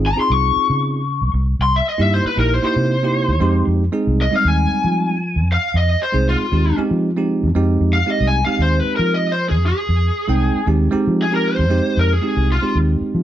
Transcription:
Already playing: fingered electric bass G#1
0.06 lead electric guitar A#5
0.16 tine electric piano C4 D#4 F4 G#4
0.21 lead electric guitar C6
0.30 fingered electric bass C2, lead electric guitar C#6
0.56 muted fingered electric bass stroke
0.70 fingered electric bass C#3
1.22 fingered electric bass C#2
1.34 fingered electric bass C2
1.59 fingered electric bass C2, lead electric guitar C6
1.76 lead electric guitar E5
1.89 lead electric guitar D#5
1.98 fingered electric bass G2, tine electric piano A#3 D#4 E4 G4, lead electric guitar E5
2.14 lead electric guitar C5
2.25 lead electric guitar B4, muted fingered electric bass stroke
2.36 fingered electric bass A#1, tine electric piano A#3 D#4 E4 G4, lead electric guitar A#4
2.54 lead electric guitar C5
2.62 tine electric piano A#3 D#4 E4 G4, lead electric guitar C5
2.76 fingered electric bass C3
3.03 tine electric piano A#3 D#4 E4 G4
3.28 fingered electric bass D#2
3.40 fingered electric bass F2, tine electric piano G#3 C4 D#4 G4
3.67 fingered electric bass F2
3.92 tine electric piano G#3 C4 D#4 G#4
4.07 fingered electric bass C2
4.22 lead electric guitar D#5
4.31 tine electric piano G3 G#3 C4 D#4
4.36 lead electric guitar F5
4.45 fingered electric bass D#2, lead electric guitar G#5
4.71 muted fingered electric bass stroke
4.84 fingered electric bass F3
5.36 fingered electric bass F2
5.52 lead electric guitar F5
5.74 fingered electric bass F2, lead electric guitar D#5
6.03 lead electric guitar C5
6.12 fingered electric bass C2, tine electric piano G#3 C4 D#4 G#4
6.29 lead electric guitar F4
6.51 fingered electric bass D#2, tine electric piano G#3 C4 D#4 G4
6.77 tine electric piano G#3 C4 D#4 G4, muted fingered electric bass stroke
6.91 fingered electric bass F3
7.17 tine electric piano G#3 C4 D#4 G4
7.43 fingered electric bass F2
7.55 fingered electric bass F2, tine electric piano G#3 C4 D#4 G4
7.81 fingered electric bass F2
7.93 lead electric guitar F5
8.06 tine electric piano G#3 C4 D#4 G4, lead electric guitar D#5
8.20 fingered electric bass C2
8.27 lead electric guitar G#5
8.45 tine electric piano G#3 C4 D#4 G4, lead electric guitar F5
8.59 fingered electric bass D#2, lead electric guitar C5
8.80 lead electric guitar B4
8.85 muted fingered electric bass stroke
8.96 fingered electric bass F3, lead electric guitar A#4
9.14 lead electric guitar D#5
9.32 lead electric guitar C5
9.49 fingered electric bass F2, lead electric guitar G#4
9.66 lead electric guitar G#4
9.89 fingered electric bass F2
10.28 fingered electric bass C2, tine electric piano G#3 C4 D#4 G5
10.55 muted fingered electric bass stroke
10.67 fingered electric bass D#2, tine electric piano G#3 C4 D#4 G4
10.91 tine electric piano G#3 C4 D#4 G4, muted fingered electric bass stroke
11.07 fingered electric bass F3
11.22 lead electric guitar G#4
11.31 tine electric piano G#3 C4 D#4 G4
11.35 lead electric guitar A#4
11.48 lead electric guitar C5
11.59 fingered electric bass F2
11.69 tine electric piano G#3 C4 D#4 G4
11.97 fingered electric bass F2, lead electric guitar A#4
12.13 lead electric guitar G#4
12.22 tine electric piano G#3 C4 D#4 G4
12.37 fingered electric bass C2
12.52 lead electric guitar F4
12.62 tine electric piano G#3 C4 D#4 G4
12.75 fingered electric bass D#2
13.01 muted fingered electric bass stroke
13.15 fingered electric bass F3

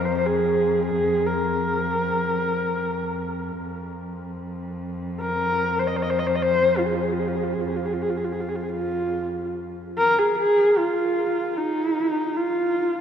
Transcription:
Already playing: cello F2
0.05 horsehead fiddle C5
0.17 horsehead fiddle C5
0.27 horsehead fiddle G#4
0.86 horsehead fiddle G#4
1.26 horsehead fiddle A#4
3.61 cello F2
5.21 horsehead fiddle A#4
5.79 horsehead fiddle C5
5.87 horsehead fiddle D#5
5.96 horsehead fiddle C5
6.03 horsehead fiddle D#5
6.10 horsehead fiddle C5
6.20 horsehead fiddle D#5
6.27 horsehead fiddle C5
6.36 horsehead fiddle D#5
6.42 horsehead fiddle C5
6.79 horsehead fiddle F4
6.86 horsehead fiddle G#4
6.95 horsehead fiddle F4
7.02 horsehead fiddle G#4
7.12 horsehead fiddle F4
7.20 horsehead fiddle G#4
7.28 horsehead fiddle F4
7.35 horsehead fiddle G#4
7.43 horsehead fiddle F4
7.53 horsehead fiddle G#4
7.61 horsehead fiddle F4
7.68 horsehead fiddle G#4
7.77 horsehead fiddle F4
7.86 horsehead fiddle G#4
7.93 horsehead fiddle F4
8.02 horsehead fiddle G#4
8.10 horsehead fiddle F4
8.17 horsehead fiddle G#4
8.25 horsehead fiddle F4
8.32 horsehead fiddle G#4
8.40 horsehead fiddle F4
8.49 horsehead fiddle G#4
8.56 horsehead fiddle F4
8.63 horsehead fiddle G#4
8.70 horsehead fiddle F4
9.98 horsehead fiddle A#4
10.19 horsehead fiddle G#4
10.38 horsehead fiddle G#4
10.78 horsehead fiddle F4
11.57 horsehead fiddle D#4
12.37 horsehead fiddle F4

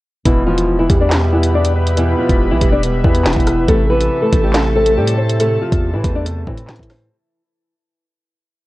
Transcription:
0.25 808-style bass E1, felt piano B2, nylon-string guitar E3 E4, ambient pad G4 B4 E5 B5, kick, closed hi-hat
0.47 felt piano E3, nylon-string guitar F3 F4
0.58 closed hi-hat
0.79 nylon-string guitar E3 E4
0.90 808-style bass E2, felt piano G3, kick, closed hi-hat
1.01 nylon-string guitar D4 D5
1.11 felt piano B2, snare, clap, closed hi-hat
1.32 nylon-string guitar E3 E4, felt piano B3
1.43 closed hi-hat
1.54 nylon-string guitar D4 D5
1.64 closed hi-hat
1.75 felt piano B4
1.87 closed hi-hat
1.97 felt piano B2, nylon-string guitar E3 E4, closed hi-hat
2.18 nylon-string guitar F3 F4
2.29 808-style bass E1, kick, closed hi-hat
2.51 808-style bass B1, nylon-string guitar E3 E4
2.61 808-style bass E1, felt piano G3, kick, closed hi-hat
2.72 nylon-string guitar D4 D5
2.83 felt piano B2, closed hi-hat
3.04 808-style bass E2, nylon-string guitar E3 E4, felt piano B3, kick
3.15 closed hi-hat
3.25 808-style bass E1, snare, clap, closed hi-hat
3.33 808-style bass E1, kick, closed hi-hat
3.40 closed hi-hat
3.47 felt piano B4, cross-stick, closed hi-hat
3.68 808-style bass A1, felt piano C3, nylon-string guitar A3 A4, ambient pad A4 A5, kick, closed hi-hat
3.90 felt piano E3, nylon-string guitar B3 B4
4.01 closed hi-hat
4.22 nylon-string guitar A3 A4
4.33 808-style bass A1, felt piano A3, kick, closed hi-hat
4.43 nylon-string guitar G3 G4
4.54 felt piano C3, snare, clap, closed hi-hat
4.75 nylon-string guitar A3 A4, felt piano C4
4.86 closed hi-hat
4.97 808-style bass A2, nylon-string guitar G3 G4
5.07 closed hi-hat
5.18 felt piano C5
5.29 closed hi-hat
5.40 felt piano C3, nylon-string guitar A3 A4, closed hi-hat
5.61 nylon-string guitar F3 F4
5.72 808-style bass E2, kick, closed hi-hat
5.93 808-style bass A2, nylon-string guitar E3 E4
6.04 808-style bass E2, felt piano A3, kick, closed hi-hat
6.15 nylon-string guitar D4 D5
6.26 felt piano C3, closed hi-hat
6.47 808-style bass A2, nylon-string guitar E3 E4, felt piano C4, kick
6.57 closed hi-hat
6.68 808-style bass A2, snare, clap, closed hi-hat
6.76 808-style bass A2, kick, closed hi-hat
6.83 closed hi-hat
6.90 felt piano C5, cross-stick, snare, open hi-hat

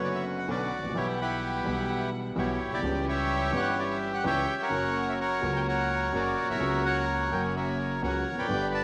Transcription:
Already playing: upright piano F#1 F#2 D3 B3 C#4 F#4, upright bass F#1, string section C#4 B4, bandoneon C#5
0.04 bandoneon F#4 D5
0.15 bandoneon E5
0.38 bandoneon F#5
0.48 upright piano B1 B2 D3 B3 C#4 F#4, upright bass B1, string section C#4 D4 B4, bandoneon F#4 D5
0.78 upright piano G#1, upright bass G#1
0.84 upright piano A1, upright bass A1
0.89 upright piano A#1, upright bass A#1
0.93 upright piano B1 B2 E3 G3 B3, upright bass B1, string section G3 E4 F#5, bandoneon E4 G4 C#5
0.97 upright piano F#5
1.21 bandoneon E4 G4 B4
1.64 upright bass B1, upright piano B1 B2 E3 G3 B3 F#5, string section G3 E4 F#5
2.35 upright piano B1 B2 E3 G3 B3 F#4, upright bass B1, string section G3 E4 F#4, bandoneon E4 G4 C#5
2.65 upright piano A#1, upright bass A#1
2.71 upright bass B1, upright piano B1, bandoneon G4 D5
2.77 upright bass C2, upright piano C2
2.82 upright bass C#2, upright piano C#2 C#3 E3 G3 C#4 G4, string section G3 C#4 E4
3.08 bandoneon G4 C#5 E5
3.51 upright piano G1 G2 E3 G3 C#4, upright bass G1, string section G3 C#4 E4
3.55 upright piano G4, bandoneon F#5
3.79 bandoneon G4 D5
3.91 bandoneon E5
4.14 bandoneon F#5
4.24 upright bass C#2, upright piano C#2 C#3 E3 G3 C#4 G4, string section G3 C#4 E4, bandoneon C#5 E5 G5
4.62 bandoneon A#4 C#5 F#5
4.69 upright bass F#1, upright piano F#2 C#3 F#3 A#3, string section A#3 C#4 F#4
4.73 upright piano F#4
5.09 bandoneon E5
5.20 bandoneon A#4 C#5 F#5
5.41 upright bass C#2, upright piano C#2 C#3 F#3 A#3 F#4, string section A#3 C#4 F#4
5.56 bandoneon G5
5.68 bandoneon A#4 C#5 F#5
6.12 upright bass F#1, upright piano F#2 C#3 F#3 A#3 F#4, string section A#3 C#4 F#4, bandoneon F#4 A#4 D5
6.42 upright piano A#1, upright bass A#1
6.49 upright piano B1, upright bass B1, bandoneon A#4 C#5 E5
6.54 upright piano C2 C#3, upright bass C2
6.59 upright piano C#2 F#3 A#3 F#4, upright bass C#2, string section A#3 C#4 F#4
6.86 bandoneon A#4 C#5 F#5
7.29 upright bass F#1, upright piano F#2 C#3 F#3 A#3, string section A#3 C#4 F#4, bandoneon G5
7.33 upright piano F#4
7.56 bandoneon A#4 C#5 E5
8.02 upright bass C#2, upright piano C#2 C#3 F#3 A#3 F#4, string section A#3 C#4 F#4, bandoneon A#4 C#5 F#5
8.32 upright bass E1, upright piano E2
8.37 upright bass F1, upright piano F2, bandoneon B4 D5 G5
8.43 upright bass F#1, upright piano F#2 D3
8.49 upright bass G1, upright piano G1 G2 G3 B3 G4, string section B3 D4 G4
8.74 bandoneon D5 A5

